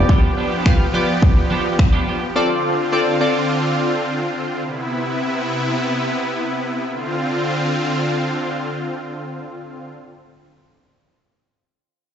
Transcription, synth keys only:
0.00 0.49 B3 medium
0.00 0.49 F4 medium
0.00 0.49 G4 medium
0.00 0.49 D5 loud
0.66 0.86 B3 medium
0.66 0.86 F4 medium
0.66 0.86 G4 medium
0.66 0.86 F5 medium
0.94 1.75 B3 medium
0.94 1.75 F4 medium
0.94 1.76 G4 medium
0.94 1.76 D5 medium
2.36 2.76 C4 medium
2.36 2.76 F4 medium
2.36 2.76 A4 medium
2.36 2.77 D5 medium
2.92 3.12 C4 medium
2.92 3.13 F4 medium
2.92 3.13 A4 medium
2.92 3.13 D5 medium
3.20 4.02 C4 medium
3.20 4.02 F4 medium
3.20 4.02 A4 medium
3.20 4.02 D5 medium

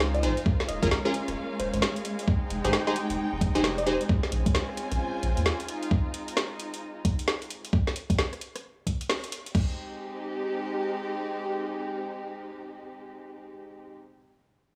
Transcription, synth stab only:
0.00 0.21 D#4 loud
0.00 0.21 F4 medium
0.00 0.21 G#4 medium
0.00 0.21 C5 loud
0.23 0.32 D#4 medium
0.23 0.32 F4 medium
0.23 0.32 G#4 medium
0.23 0.32 C5 medium
0.82 0.88 C#4 loud
0.82 0.88 F4 loud
0.82 0.88 G#4 loud
0.82 0.88 A#4 loud
1.05 1.14 C#4 medium
1.05 1.14 F4 medium
1.05 1.14 G#4 medium
1.05 1.14 A#4 loud
2.64 2.84 D#4 medium
2.64 2.84 G4 medium
2.64 2.84 G#4 medium
2.64 2.84 C5 medium
2.87 2.96 D#4 medium
2.87 2.96 G4 medium
2.87 2.96 G#4 medium
2.87 2.95 C5 loud
3.55 3.85 D#4 medium
3.55 3.84 G4 medium
3.55 3.84 G#4 medium
3.55 3.85 C5 loud
3.86 3.95 D#4 medium
3.86 3.95 G4 medium
3.86 3.95 G#4 medium
3.86 3.95 C5 loud

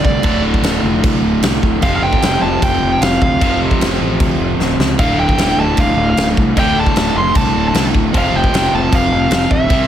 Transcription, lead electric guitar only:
0.05 0.41 D5 medium
1.83 1.95 F5 loud
1.96 2.03 F5 medium
2.03 2.39 G5 loud
2.42 2.64 A5 loud
2.64 2.91 G5 loud
2.92 3.01 G5 medium
3.01 3.21 F5 medium
3.22 3.58 F5 medium
4.99 5.19 F5 medium
5.19 5.60 G5 loud
5.60 5.79 A5 loud
5.80 6.09 F5 loud
6.10 6.27 F5 medium
6.59 6.78 G5 loud
6.80 7.17 A5 loud
7.18 7.36 C6 loud
7.36 7.66 A5 loud
7.68 7.85 A5 loud
8.18 8.36 F5 loud
8.36 8.74 G5 loud
8.75 8.94 A5 loud
8.95 9.52 F5 loud
9.52 9.87 E5 medium

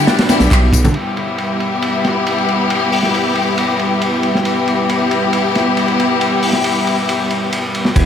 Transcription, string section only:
0.00 0.27 B3 medium
0.00 0.26 E4 medium
0.00 0.27 G4 medium
0.29 0.43 B3 medium
0.29 0.43 E4 medium
0.29 0.43 G4 medium
0.95 4.43 B3 medium
0.95 4.43 E4 medium
0.95 4.43 G4 medium
4.45 7.93 B3 medium
4.45 7.93 E4 medium
4.45 7.93 G4 medium

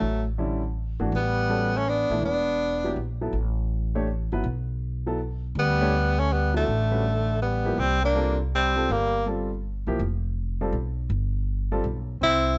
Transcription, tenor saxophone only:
0.00 0.26 A3 medium
1.16 1.79 B3 medium
1.78 1.90 C#4 medium
1.89 2.24 D4 loud
2.25 2.94 D4 medium
5.59 6.21 B3 loud
6.20 6.34 C#4 medium
6.33 6.56 B3 medium
6.56 7.38 A3 medium
7.42 7.81 B3 medium
7.80 8.03 C4 loud
8.05 8.38 D4 medium
8.55 8.93 C4 medium
8.92 9.27 A#3 medium
12.23 12.57 E4 loud

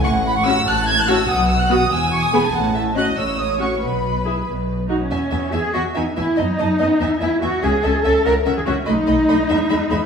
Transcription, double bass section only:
0.04 0.56 A1 medium
0.67 1.18 A1 medium
1.29 1.81 B1 medium
1.91 2.43 E1 medium
2.53 3.06 A1 medium
3.17 3.70 A1 medium
3.81 4.35 B1 medium
4.46 5.00 B1 soft
5.11 5.19 E2 medium
5.32 5.40 E2 medium
5.53 5.61 E2 medium
5.74 5.82 E2 medium
5.96 6.04 E2 medium
6.17 6.25 E2 medium
6.38 6.46 F#2 medium
6.59 6.67 F#2 medium
6.80 6.88 F#2 medium
7.01 7.09 E2 medium
7.22 7.30 E2 medium
7.43 7.51 E2 medium
7.64 7.72 C#2 medium
7.85 7.93 C#2 medium
8.05 8.13 C#2 medium
8.26 8.34 C#2 medium
8.47 8.55 C#2 medium
8.67 8.75 C#2 medium
8.87 8.95 B1 medium
9.08 9.16 B1 medium
9.29 9.37 B1 medium
9.50 9.58 E2 medium
9.71 9.79 E2 medium
9.91 9.99 E2 medium

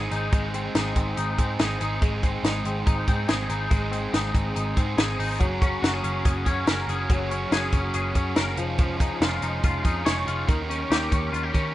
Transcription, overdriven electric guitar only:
0.00 0.11 G#3 soft
0.00 0.12 C4 medium
0.00 0.11 D#4 medium
0.00 0.10 G#4 medium
0.11 0.32 G#3 soft
0.11 0.33 C4 soft
0.11 0.33 D#4 medium
0.11 0.32 G#4 soft
0.33 0.54 G#2 medium
0.33 0.54 D#3 medium
0.33 0.54 G#3 medium
0.33 0.54 C4 medium
0.33 0.54 D#4 medium
0.33 0.53 G#4 medium
0.54 0.74 G#3 soft
0.54 0.75 C4 medium
0.54 0.76 D#4 soft
0.54 0.75 G#4 medium
0.75 1.40 G#3 medium
0.75 1.39 C4 medium
0.75 1.38 D#4 medium
0.75 1.38 G#4 medium
1.38 1.58 G#3 soft
1.38 1.59 C4 soft
1.38 1.60 D#4 medium
1.38 1.59 G#4 medium
1.59 1.80 G#3 medium
1.59 1.81 C4 medium
1.59 1.80 D#4 medium
1.59 1.79 G#4 medium
1.80 2.01 G#3 soft
1.80 2.01 C4 soft
1.80 2.02 D#4 medium
1.80 2.01 G#4 medium
2.01 2.23 G#2 medium
2.01 2.23 D#3 medium
2.01 2.23 G#3 medium
2.01 2.23 C4 medium
2.01 2.23 D#4 medium
2.01 2.22 G#4 medium
2.23 2.43 G#3 soft
2.23 2.44 C4 soft
2.23 2.45 D#4 medium
2.23 2.44 G#4 medium
2.44 3.09 G#3 medium
2.44 3.07 C4 medium
2.44 3.07 D#4 medium
2.44 3.06 G#4 medium
3.07 3.27 G#3 soft
3.07 3.28 C4 medium
3.07 3.29 D#4 soft
3.07 3.28 G#4 medium
3.28 3.50 G#3 medium
3.28 3.50 C4 medium
3.28 3.50 D#4 medium
3.28 3.48 G#4 medium
3.50 3.72 G#3 soft
3.50 3.72 C4 soft
3.50 3.72 D#4 soft
3.50 3.71 G#4 medium
3.72 3.93 G#2 medium
3.72 3.93 D#3 medium
3.72 3.93 G#3 medium
3.72 3.93 C4 medium
3.72 3.92 D#4 medium
3.72 3.91 G#4 medium
3.92 4.12 G#3 soft
3.92 4.13 C4 soft
3.92 4.14 D#4 soft
3.92 4.13 G#4 medium
4.13 4.79 G#3 medium
4.13 4.77 C4 medium
4.13 4.76 D#4 medium
4.13 4.75 G#4 medium
4.76 4.96 G#3 soft
4.76 4.97 C4 soft
4.76 4.98 D#4 soft
4.76 4.98 G#4 medium
4.98 5.19 G#3 soft
4.98 5.19 C4 medium
4.98 5.18 D#4 medium
4.98 5.16 G#4 medium
5.18 5.40 G#3 soft
5.18 5.40 C4 soft
5.18 5.40 D#4 soft
5.18 5.40 G#4 medium
5.40 5.61 F#3 medium
5.40 5.61 A#3 medium
5.40 5.62 C#4 medium
5.40 5.61 F#4 medium
5.40 5.59 G#4 medium
5.60 5.81 C#4 soft
5.60 5.82 F#4 medium
5.60 5.82 G#4 medium
5.81 6.45 A#3 medium
5.81 6.48 C#4 medium
5.81 6.46 F#4 medium
5.81 6.45 G#4 medium
6.45 6.66 C#4 medium
6.45 6.67 F#4 soft
6.45 6.67 G#4 medium
6.65 6.88 A#3 medium
6.65 6.88 C#4 medium
6.65 6.88 F#4 medium
6.65 6.86 G#4 medium
6.87 7.08 C#4 soft
6.87 7.09 F#4 soft
6.87 7.09 G#4 soft
7.09 7.30 F#3 medium
7.09 7.31 A#3 medium
7.09 7.31 C#4 medium
7.09 7.30 F#4 medium
7.09 7.28 G#4 medium
7.29 7.50 C#4 soft
7.29 7.51 F#4 soft
7.29 7.51 G#4 medium
7.50 8.15 A#3 medium
7.50 8.17 C#4 medium
7.50 8.15 F#4 medium
7.50 8.14 G#4 medium
8.14 8.35 C#4 soft
8.14 8.37 F#4 soft
8.14 8.36 G#4 medium
8.35 8.57 A#3 medium
8.35 8.58 C#4 medium
8.35 8.58 F#4 medium
8.35 8.55 G#4 medium
8.57 8.78 C#4 soft
8.57 8.78 D#4 soft
8.57 8.78 G#4 medium
8.78 9.00 F3 medium
8.78 9.00 G#3 medium
8.78 9.00 C#4 medium
8.78 9.00 D#4 medium
8.78 8.98 G#4 medium
8.99 9.20 C#4 soft
8.99 9.22 D#4 medium
8.99 9.21 G#4 medium
9.20 9.84 G#3 medium
9.20 9.87 C#4 medium
9.20 9.85 D#4 medium
9.20 9.83 G#4 medium
9.84 10.05 C#4 soft
9.84 10.06 D#4 soft
9.84 10.05 G#4 medium
10.05 10.27 G#3 medium
10.05 10.27 C#4 medium
10.05 10.26 D#4 medium
10.05 10.25 G#4 medium
10.26 10.47 C#4 soft
10.26 10.48 D#4 soft
10.26 10.48 G#4 medium
10.47 10.69 D#3 medium
10.47 10.69 A#3 medium
10.47 10.70 C#4 medium
10.47 10.70 G4 medium
10.47 10.68 A#4 medium
10.69 10.91 C#4 soft
10.69 10.92 G4 medium
10.69 10.91 A#4 medium
10.91 11.74 A#3 medium
10.91 11.55 C#4 medium
10.91 11.54 G4 medium
10.91 11.53 A#4 medium
11.53 11.74 C#4 soft
11.53 11.74 G4 soft
11.53 11.74 A#4 medium

